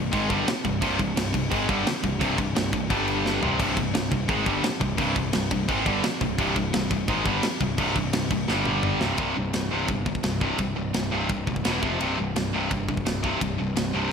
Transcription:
Already playing: C1
0.11 G#1 G#2 D#3 G#3, kick, crash
0.29 G1 G2 D3 G3, kick, crash
0.48 muted distorted electric guitar stroke, muted picked electric bass stroke, snare, crash
0.65 C1 C2 G2, kick, crash
0.81 C1 C2 G2 C3, kick, crash
0.99 C1 C2 G2, kick, crash
1.16 C1 C2 G2, snare, crash
1.34 C1 C2 G2, kick, crash
1.51 G#1 G#2 D#3 G#3, kick, crash
1.69 G1 G2 D3 G3, kick, crash
1.86 muted distorted electric guitar stroke, muted picked electric bass stroke, snare, crash
2.04 C1 C2 G2, kick, crash
2.20 C1 C2 G2 C3, kick, crash
2.38 C1 C2 G2, kick, crash
2.55 C1 C2 G2, snare, crash
2.73 C1 C2 G2, kick, crash
2.90 G1 G2 D3 G3, kick, crash
3.08 crash
3.26 snare
3.42 C1 C2 G2 C3, floor tom
3.59 C1 C2 G2 C3, kick, crash
3.77 C1 C2 G2, kick, crash
3.94 C1 C2 G2, snare, crash
4.11 C1 C2 G2, kick, crash
4.28 G#1 G#2 D#3 G#3, kick, crash
4.45 G1 G2 D3 G3, kick, crash
4.63 muted distorted electric guitar stroke, muted picked electric bass stroke, snare, crash
4.80 C1 C2 G2, kick, crash
4.97 C1 C2 G2 C3, kick, crash
5.16 C1 C2 G2, kick, crash
5.33 C1 C2 G2, snare, crash
5.51 C1 C2 G2, kick, crash
5.68 G#1 G#2 D#3 G#3, kick, crash
5.85 G1 G2 D3 G3, kick, crash
6.03 muted distorted electric guitar stroke, muted picked electric bass stroke, snare, crash
6.21 C1 C2 G2, kick, crash
6.38 C1 C2 G2 C3, kick, crash
6.56 C1 C2 G2, kick, crash
6.73 C1 C2 G2, snare, crash
6.91 C1 C2 G2, kick, crash
7.08 G#1 G#2 D#3 G#3, kick, crash
7.25 G1 G2 D3 G3, kick, crash
7.43 muted distorted electric guitar stroke, muted picked electric bass stroke, snare, crash
7.60 C1 C2 G2, kick, crash
7.78 C1 C2 G2 C3, kick, crash
7.96 C1 C2 G2, kick, crash
8.13 C1 C2 G2, snare, crash
8.31 C1 C2 G2, kick, crash
8.48 G1 G2 D3 G3, snare
8.65 mid tom
8.83 mid tom
9.01 C1 C2 G2 C3, snare
9.18 C1 C2 G2 C3, kick, ride bell
9.36 C1 C2 G2
9.54 C1 C2 G2, snare, ride bell
9.71 C1 C2 G2 C3
9.88 G1 C2 G2, kick, ride bell
10.06 C2 G2, kick
10.15 kick
10.23 C1 C2 G2, snare, ride bell
10.41 C2 G2 C3, kick
10.58 C1 C2 G2, kick, ride bell
10.76 C1 C2 G2
10.94 C1 C2 G2, snare, ride bell
11.11 C1 C2 G2 C3
11.29 C1 C2 G2, kick, ride bell
11.47 C#1 C2 G2, kick
11.56 kick
11.65 E1 E2 B2 E3, snare, ride bell
11.83 F1 F2 C3 F3, kick
12.00 C1 C2 G2 C3, ride bell
12.18 C1 C2 G2
12.36 C1 C2 G2, snare, ride bell
12.53 C1 C2 G2 C3
12.71 G1 C2 G2, kick, ride bell
12.88 C2 G2, kick
12.97 kick
13.06 C1 C2 G2, snare, ride bell
13.23 C2 G2 C3, kick
13.41 C1 C2 G2, kick, ride bell
13.58 C1 C2 G2
13.76 C1 C2 G2, snare, ride bell
13.93 C1 C2 G2 C3

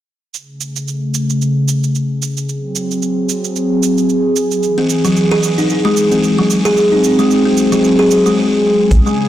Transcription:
0.34 C#3 A3 G#4, shaker
0.61 shaker
0.76 shaker
0.88 shaker
1.14 shaker
1.30 shaker
1.42 shaker
1.68 shaker
1.84 shaker
1.95 shaker
2.22 shaker
2.37 shaker
2.49 F#3 C4, shaker
2.76 shaker
2.91 shaker
3.02 shaker
3.29 shaker
3.44 shaker
3.56 shaker
3.83 shaker
3.98 shaker
4.09 shaker
4.36 shaker
4.51 shaker
4.63 E3, shaker
4.78 C4
4.90 shaker
5.05 F#3, shaker
5.17 shaker
5.32 G#4
5.43 shaker
5.58 D#4, shaker
5.70 shaker
5.85 G#3
5.97 shaker
6.12 C4, shaker
6.23 shaker
6.38 F#3
6.50 shaker
6.65 G#4, shaker
6.77 F#3 C4, shaker
6.92 D#4
7.04 shaker
7.19 G#3, shaker
7.31 shaker
7.45 C4
7.57 shaker
7.72 F#3, shaker
7.84 shaker
7.99 G#4
8.11 shaker
8.26 G#3, shaker
8.91 A1 C#3 G#4, kick, open hi-hat, shaker
9.06 G#3, shaker

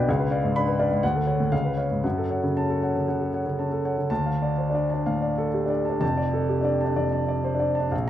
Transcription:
Already playing: B1 B2 B4 D5 G5 B5
0.09 C#2 F5
0.19 B4
0.31 D5 F5
0.44 G#2
0.56 D4 B5
0.68 B4
0.79 D4 D5 F5
0.91 G#2
1.03 D2 F#5
1.15 A4
1.27 C#5 F#5
1.40 A2
1.52 C#2 F5
1.65 B4
1.77 C#5 F5
1.91 G#2
2.04 F#2 F#5
2.18 A4
2.31 C#5 F#5
2.44 C#3
2.57 C#4 A5
2.70 A4
2.83 C#5 F#5
2.96 C#3
3.08 C#3 F#5
3.21 A4
3.34 C#5 F#5
3.46 C#3
3.59 C#4 A5
3.72 A4
3.85 C#5 F#5
3.98 C#3
4.10 D2 A5
4.26 F5
4.42 D5
4.58 C5
4.70 D4
4.75 D5
4.90 D4 A5
5.06 A2 F5
5.22 D5
5.38 A4
5.54 G4
5.66 D4 D5
5.85 A5
5.90 D4
6.00 F1 F2 A5
6.17 D5
6.33 A4
6.49 G4
6.61 D4 D5
6.81 A5
6.85 D4
6.96 F2 D5
7.12 A5
7.28 D5
7.44 C5
7.55 D4
7.60 D5
7.75 A5
7.80 D4
7.92 A#1 F5

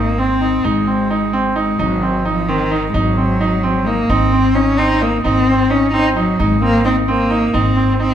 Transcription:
Already playing: G#1 A#3 D#4
0.18 C4
0.41 D#4
0.64 G#1 G#3 D#4
0.87 C4
1.10 D#4
1.33 C4
1.56 G#3 D#4
1.79 G#1 F#3 D#4
2.02 C4
2.25 F3 D#4
2.49 D#3 C4
2.71 D#4
2.89 G#3
2.94 G#1 F#3 D#4
3.17 C4
3.41 D#4
3.63 C4
3.86 A#3 D#4
4.09 G#1 C4 D#4
4.33 C4
4.54 C#4 D#4
4.78 C4 D#4
5.01 A#3 D#4
5.24 G#1 C4 D#4
5.47 C4
5.70 C#4 D#4
5.93 C4 D#4
6.16 F#3 D#4
6.39 G#1 G#3 D#4
6.62 A#3 C4
6.85 C4 D#4
7.08 A#3 C4
7.31 D#4
7.54 G#1 C4 D#4
7.77 C4
8.00 C4 D#4

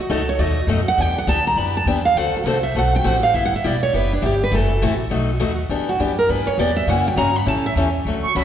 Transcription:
0.00 F#4
0.10 C#2 B2 F#3 A3 D#4 F#4 A4
0.29 C#5
0.39 D#2 B2 F#3 A3 D#4 F#4 D#5
0.67 F#2 B2 F#3 A3 D#4 F#4
0.88 F#5
0.98 E2 E3 B3 D4 G4 G5
1.18 F#5
1.27 D2 E3 B3 D4 G4 A5
1.47 A#5
1.56 F#2 E3 B3 D4 G4 B5
1.77 A5
1.86 E2 E3 B3 D4 G4 G5
2.05 F5
2.16 D2 D3 A3 C4 F#4 A4 F#5
2.34 A4, muted upright bass stroke
2.44 C2 D3 A3 C4 F#4 A4 C5
2.63 E5
2.75 B1 D3 A3 C4 F#4 A4 F#5
2.96 G5
3.04 A1 D3 A3 C4 F#4 A4 F#5
3.23 F5
3.33 G1 G3 B3 E4 G4 E5
3.45 F#5
3.52 E5, muted upright bass stroke
3.64 E1 G3 B3 E4 G4 D5
3.83 C#5
3.93 F#1 G3 B3 E4 G4 B4
4.13 D4
4.22 G1 G3 B3 E4 G4
4.44 B4
4.51 F#1 C3 E3 A3 E4 F#4 A4
4.81 A1 C3 E3 A3 E4 F#4
5.10 B1 B2 F#3 A3 D#4 F#4
5.39 D#2 B2 F#3 A3 D#4 F#4
5.69 E2 E3 B3 D4 G4
5.89 F#4
6.00 F#2 E3 B3 D4 G4
6.19 A#4
6.29 G2 E3 B3 D4 G4 B4
6.47 C#5, muted upright bass stroke
6.58 E2 E3 B3 D4 G4 D5
6.76 E5
6.87 F#2 C#3 E3 A#3 C#4 F#4 F#5
7.08 G5
7.16 G2 C#3 E3 A#3 C#4 F#4 A#5
7.36 B5
7.46 A2 E3 G3 C#4 E4 A4 A5
7.66 E5
7.75 E2 E3 G3 C#4 E4 A4
8.05 D2 D3 F#3 A3 C#4 F#4
8.24 C#6, muted upright bass stroke
8.35 C#2 D3 F#3 A3 C#4 F#4 B5

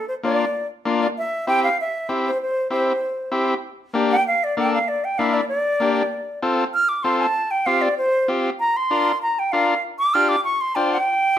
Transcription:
0.08 C5
0.23 A#3 D4 F4 D5
0.86 A#3 D4 F4
1.02 D5
1.18 E5
1.47 C4 E4 G4 G5
1.64 F5
1.81 E5
2.09 C4 E4 G4
2.27 C5
2.42 C5
2.70 C4 E4 G4 C5
3.32 C4 E4 G4
3.94 A#3 D4 G4
4.11 G5
4.27 F5
4.44 D5
4.57 A#3 D4 A4 G5
4.74 F5
4.88 D5
5.04 G5
5.18 A#3 D4 E4 F5
5.34 D5
5.48 D5
5.80 A#3 D4 G4
6.43 C4 F4 A4
6.74 F6
6.89 D6
7.03 C4 F4 A4 C6
7.19 A5
7.51 G5
7.66 C4 F4 G4 F5
7.82 D5
7.98 C5
8.28 C4 F4 G4
8.60 A#5
8.77 C6
8.91 D4 F4 A#4
9.22 A#5
9.39 G5
9.52 D4 F4 A#4 F5
9.99 D6
10.14 D4 F4 G4 F6
10.29 D6
10.44 C#6
10.61 C6
10.75 D4 F4 C5 G5
10.93 G5

